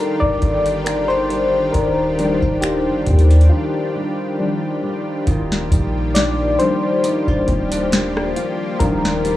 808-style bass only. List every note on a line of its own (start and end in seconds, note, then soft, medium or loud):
0.22 0.41 D#1 loud
0.42 1.70 G1 loud
1.75 2.40 D#1 loud
2.42 2.88 D#1 loud
2.87 3.06 G1 medium
3.07 3.49 D#2 loud
5.27 5.70 D#1 loud
5.72 6.56 A#1 loud
7.28 7.47 D#1 loud
7.48 8.33 D#1 loud
8.80 9.37 D#1 loud